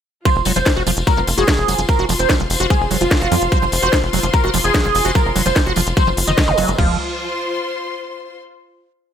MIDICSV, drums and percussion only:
0, 0, Header, 1, 2, 480
1, 0, Start_track
1, 0, Tempo, 408163
1, 299, Time_signature, 4, 2, 24, 8
1, 10743, End_track
2, 0, Start_track
2, 0, Title_t, "Drums"
2, 298, Note_on_c, 9, 54, 56
2, 299, Note_on_c, 9, 36, 121
2, 299, Note_on_c, 9, 42, 70
2, 416, Note_off_c, 9, 54, 0
2, 416, Note_on_c, 9, 54, 28
2, 417, Note_off_c, 9, 36, 0
2, 417, Note_off_c, 9, 42, 0
2, 532, Note_off_c, 9, 54, 0
2, 532, Note_on_c, 9, 54, 97
2, 539, Note_on_c, 9, 46, 107
2, 650, Note_off_c, 9, 54, 0
2, 657, Note_off_c, 9, 46, 0
2, 659, Note_on_c, 9, 42, 71
2, 668, Note_on_c, 9, 54, 43
2, 767, Note_off_c, 9, 54, 0
2, 767, Note_on_c, 9, 54, 47
2, 777, Note_off_c, 9, 42, 0
2, 779, Note_on_c, 9, 36, 119
2, 779, Note_on_c, 9, 38, 127
2, 779, Note_on_c, 9, 42, 73
2, 884, Note_off_c, 9, 54, 0
2, 896, Note_off_c, 9, 38, 0
2, 896, Note_off_c, 9, 42, 0
2, 897, Note_off_c, 9, 36, 0
2, 898, Note_on_c, 9, 54, 28
2, 1016, Note_off_c, 9, 54, 0
2, 1019, Note_on_c, 9, 46, 98
2, 1019, Note_on_c, 9, 54, 88
2, 1136, Note_off_c, 9, 46, 0
2, 1136, Note_off_c, 9, 54, 0
2, 1139, Note_on_c, 9, 42, 70
2, 1145, Note_on_c, 9, 54, 42
2, 1257, Note_off_c, 9, 42, 0
2, 1259, Note_on_c, 9, 36, 120
2, 1259, Note_on_c, 9, 42, 72
2, 1262, Note_off_c, 9, 54, 0
2, 1264, Note_on_c, 9, 54, 49
2, 1377, Note_off_c, 9, 36, 0
2, 1377, Note_off_c, 9, 42, 0
2, 1379, Note_off_c, 9, 54, 0
2, 1379, Note_on_c, 9, 54, 27
2, 1497, Note_off_c, 9, 54, 0
2, 1498, Note_on_c, 9, 54, 105
2, 1499, Note_on_c, 9, 46, 108
2, 1615, Note_off_c, 9, 54, 0
2, 1617, Note_off_c, 9, 46, 0
2, 1619, Note_on_c, 9, 42, 74
2, 1619, Note_on_c, 9, 54, 37
2, 1736, Note_off_c, 9, 54, 0
2, 1737, Note_off_c, 9, 42, 0
2, 1739, Note_on_c, 9, 36, 121
2, 1739, Note_on_c, 9, 38, 127
2, 1739, Note_on_c, 9, 42, 71
2, 1744, Note_on_c, 9, 54, 54
2, 1857, Note_off_c, 9, 36, 0
2, 1857, Note_off_c, 9, 38, 0
2, 1857, Note_off_c, 9, 42, 0
2, 1862, Note_off_c, 9, 54, 0
2, 1863, Note_on_c, 9, 54, 28
2, 1979, Note_on_c, 9, 46, 98
2, 1980, Note_off_c, 9, 54, 0
2, 1982, Note_on_c, 9, 54, 99
2, 2097, Note_off_c, 9, 46, 0
2, 2099, Note_on_c, 9, 42, 70
2, 2100, Note_off_c, 9, 54, 0
2, 2101, Note_on_c, 9, 54, 41
2, 2215, Note_off_c, 9, 54, 0
2, 2215, Note_on_c, 9, 54, 55
2, 2217, Note_off_c, 9, 42, 0
2, 2219, Note_on_c, 9, 36, 124
2, 2219, Note_on_c, 9, 42, 67
2, 2333, Note_off_c, 9, 54, 0
2, 2337, Note_off_c, 9, 36, 0
2, 2337, Note_off_c, 9, 42, 0
2, 2339, Note_on_c, 9, 54, 29
2, 2457, Note_off_c, 9, 54, 0
2, 2458, Note_on_c, 9, 54, 101
2, 2459, Note_on_c, 9, 46, 107
2, 2573, Note_off_c, 9, 54, 0
2, 2573, Note_on_c, 9, 54, 40
2, 2577, Note_off_c, 9, 46, 0
2, 2579, Note_on_c, 9, 42, 70
2, 2690, Note_off_c, 9, 54, 0
2, 2697, Note_off_c, 9, 42, 0
2, 2699, Note_on_c, 9, 36, 126
2, 2699, Note_on_c, 9, 38, 127
2, 2699, Note_on_c, 9, 42, 69
2, 2707, Note_on_c, 9, 54, 49
2, 2816, Note_off_c, 9, 54, 0
2, 2816, Note_on_c, 9, 54, 27
2, 2817, Note_off_c, 9, 36, 0
2, 2817, Note_off_c, 9, 38, 0
2, 2817, Note_off_c, 9, 42, 0
2, 2934, Note_off_c, 9, 54, 0
2, 2939, Note_on_c, 9, 46, 99
2, 2943, Note_on_c, 9, 54, 102
2, 3052, Note_off_c, 9, 54, 0
2, 3052, Note_on_c, 9, 54, 39
2, 3057, Note_off_c, 9, 46, 0
2, 3059, Note_on_c, 9, 42, 66
2, 3170, Note_off_c, 9, 54, 0
2, 3177, Note_off_c, 9, 42, 0
2, 3179, Note_on_c, 9, 36, 127
2, 3179, Note_on_c, 9, 42, 70
2, 3184, Note_on_c, 9, 54, 51
2, 3297, Note_off_c, 9, 36, 0
2, 3297, Note_off_c, 9, 42, 0
2, 3302, Note_off_c, 9, 54, 0
2, 3309, Note_on_c, 9, 54, 27
2, 3419, Note_on_c, 9, 46, 112
2, 3426, Note_off_c, 9, 54, 0
2, 3426, Note_on_c, 9, 54, 102
2, 3534, Note_off_c, 9, 54, 0
2, 3534, Note_on_c, 9, 54, 41
2, 3537, Note_off_c, 9, 46, 0
2, 3539, Note_on_c, 9, 42, 69
2, 3652, Note_off_c, 9, 54, 0
2, 3657, Note_off_c, 9, 42, 0
2, 3659, Note_on_c, 9, 36, 127
2, 3659, Note_on_c, 9, 38, 127
2, 3659, Note_on_c, 9, 42, 70
2, 3660, Note_on_c, 9, 54, 51
2, 3776, Note_off_c, 9, 54, 0
2, 3776, Note_on_c, 9, 54, 29
2, 3777, Note_off_c, 9, 36, 0
2, 3777, Note_off_c, 9, 38, 0
2, 3777, Note_off_c, 9, 42, 0
2, 3893, Note_off_c, 9, 54, 0
2, 3899, Note_on_c, 9, 46, 102
2, 3900, Note_on_c, 9, 54, 96
2, 4013, Note_off_c, 9, 54, 0
2, 4013, Note_on_c, 9, 54, 43
2, 4017, Note_off_c, 9, 46, 0
2, 4019, Note_on_c, 9, 42, 66
2, 4131, Note_off_c, 9, 54, 0
2, 4137, Note_off_c, 9, 42, 0
2, 4139, Note_on_c, 9, 36, 125
2, 4139, Note_on_c, 9, 42, 66
2, 4141, Note_on_c, 9, 54, 57
2, 4257, Note_off_c, 9, 36, 0
2, 4257, Note_off_c, 9, 42, 0
2, 4257, Note_off_c, 9, 54, 0
2, 4257, Note_on_c, 9, 54, 29
2, 4375, Note_off_c, 9, 54, 0
2, 4375, Note_on_c, 9, 54, 97
2, 4379, Note_on_c, 9, 46, 112
2, 4493, Note_off_c, 9, 54, 0
2, 4496, Note_off_c, 9, 46, 0
2, 4499, Note_on_c, 9, 42, 67
2, 4502, Note_on_c, 9, 54, 42
2, 4616, Note_off_c, 9, 42, 0
2, 4618, Note_off_c, 9, 54, 0
2, 4618, Note_on_c, 9, 54, 56
2, 4619, Note_on_c, 9, 36, 123
2, 4619, Note_on_c, 9, 38, 125
2, 4619, Note_on_c, 9, 42, 66
2, 4736, Note_off_c, 9, 38, 0
2, 4736, Note_off_c, 9, 42, 0
2, 4736, Note_off_c, 9, 54, 0
2, 4737, Note_off_c, 9, 36, 0
2, 4744, Note_on_c, 9, 54, 29
2, 4859, Note_off_c, 9, 54, 0
2, 4859, Note_on_c, 9, 46, 104
2, 4859, Note_on_c, 9, 54, 91
2, 4976, Note_off_c, 9, 46, 0
2, 4976, Note_off_c, 9, 54, 0
2, 4976, Note_on_c, 9, 54, 41
2, 4979, Note_on_c, 9, 42, 65
2, 5094, Note_off_c, 9, 54, 0
2, 5096, Note_off_c, 9, 42, 0
2, 5099, Note_on_c, 9, 36, 127
2, 5099, Note_on_c, 9, 42, 68
2, 5109, Note_on_c, 9, 54, 51
2, 5215, Note_off_c, 9, 54, 0
2, 5215, Note_on_c, 9, 54, 28
2, 5217, Note_off_c, 9, 36, 0
2, 5217, Note_off_c, 9, 42, 0
2, 5333, Note_off_c, 9, 54, 0
2, 5334, Note_on_c, 9, 54, 111
2, 5339, Note_on_c, 9, 46, 114
2, 5451, Note_off_c, 9, 54, 0
2, 5457, Note_off_c, 9, 46, 0
2, 5459, Note_on_c, 9, 42, 66
2, 5463, Note_on_c, 9, 54, 45
2, 5576, Note_off_c, 9, 42, 0
2, 5579, Note_on_c, 9, 36, 127
2, 5579, Note_on_c, 9, 38, 126
2, 5579, Note_on_c, 9, 42, 68
2, 5581, Note_off_c, 9, 54, 0
2, 5581, Note_on_c, 9, 54, 57
2, 5697, Note_off_c, 9, 36, 0
2, 5697, Note_off_c, 9, 38, 0
2, 5697, Note_off_c, 9, 42, 0
2, 5699, Note_off_c, 9, 54, 0
2, 5708, Note_on_c, 9, 54, 29
2, 5819, Note_on_c, 9, 46, 103
2, 5825, Note_off_c, 9, 54, 0
2, 5826, Note_on_c, 9, 54, 91
2, 5937, Note_off_c, 9, 46, 0
2, 5939, Note_on_c, 9, 42, 65
2, 5943, Note_off_c, 9, 54, 0
2, 5946, Note_on_c, 9, 54, 40
2, 6055, Note_off_c, 9, 54, 0
2, 6055, Note_on_c, 9, 54, 51
2, 6056, Note_off_c, 9, 42, 0
2, 6059, Note_on_c, 9, 36, 122
2, 6059, Note_on_c, 9, 42, 67
2, 6173, Note_off_c, 9, 54, 0
2, 6174, Note_on_c, 9, 54, 28
2, 6177, Note_off_c, 9, 36, 0
2, 6177, Note_off_c, 9, 42, 0
2, 6292, Note_off_c, 9, 54, 0
2, 6299, Note_on_c, 9, 46, 114
2, 6301, Note_on_c, 9, 54, 92
2, 6416, Note_off_c, 9, 46, 0
2, 6418, Note_off_c, 9, 54, 0
2, 6419, Note_on_c, 9, 42, 64
2, 6426, Note_on_c, 9, 54, 44
2, 6537, Note_off_c, 9, 42, 0
2, 6537, Note_off_c, 9, 54, 0
2, 6537, Note_on_c, 9, 54, 52
2, 6539, Note_on_c, 9, 36, 127
2, 6539, Note_on_c, 9, 38, 122
2, 6539, Note_on_c, 9, 42, 66
2, 6654, Note_off_c, 9, 54, 0
2, 6657, Note_off_c, 9, 36, 0
2, 6657, Note_off_c, 9, 38, 0
2, 6657, Note_off_c, 9, 42, 0
2, 6661, Note_on_c, 9, 54, 28
2, 6772, Note_off_c, 9, 54, 0
2, 6772, Note_on_c, 9, 54, 97
2, 6779, Note_on_c, 9, 46, 100
2, 6889, Note_off_c, 9, 54, 0
2, 6896, Note_on_c, 9, 54, 38
2, 6897, Note_off_c, 9, 46, 0
2, 6899, Note_on_c, 9, 42, 63
2, 7013, Note_off_c, 9, 54, 0
2, 7017, Note_off_c, 9, 42, 0
2, 7019, Note_on_c, 9, 36, 125
2, 7019, Note_on_c, 9, 42, 66
2, 7024, Note_on_c, 9, 54, 51
2, 7137, Note_off_c, 9, 36, 0
2, 7137, Note_off_c, 9, 42, 0
2, 7139, Note_off_c, 9, 54, 0
2, 7139, Note_on_c, 9, 54, 29
2, 7257, Note_off_c, 9, 54, 0
2, 7259, Note_on_c, 9, 46, 112
2, 7261, Note_on_c, 9, 54, 90
2, 7377, Note_off_c, 9, 46, 0
2, 7379, Note_off_c, 9, 54, 0
2, 7379, Note_on_c, 9, 42, 63
2, 7383, Note_on_c, 9, 54, 43
2, 7497, Note_off_c, 9, 42, 0
2, 7497, Note_off_c, 9, 54, 0
2, 7497, Note_on_c, 9, 54, 54
2, 7499, Note_on_c, 9, 36, 126
2, 7499, Note_on_c, 9, 38, 121
2, 7499, Note_on_c, 9, 42, 67
2, 7614, Note_off_c, 9, 54, 0
2, 7617, Note_off_c, 9, 36, 0
2, 7617, Note_off_c, 9, 38, 0
2, 7617, Note_off_c, 9, 42, 0
2, 7617, Note_on_c, 9, 54, 27
2, 7732, Note_off_c, 9, 54, 0
2, 7732, Note_on_c, 9, 54, 97
2, 7739, Note_on_c, 9, 46, 104
2, 7850, Note_off_c, 9, 54, 0
2, 7857, Note_off_c, 9, 46, 0
2, 7857, Note_on_c, 9, 54, 43
2, 7859, Note_on_c, 9, 42, 64
2, 7975, Note_off_c, 9, 54, 0
2, 7977, Note_off_c, 9, 42, 0
2, 7979, Note_on_c, 9, 36, 104
2, 7979, Note_on_c, 9, 43, 108
2, 7979, Note_on_c, 9, 49, 89
2, 8097, Note_off_c, 9, 36, 0
2, 8097, Note_off_c, 9, 43, 0
2, 8097, Note_off_c, 9, 49, 0
2, 10743, End_track
0, 0, End_of_file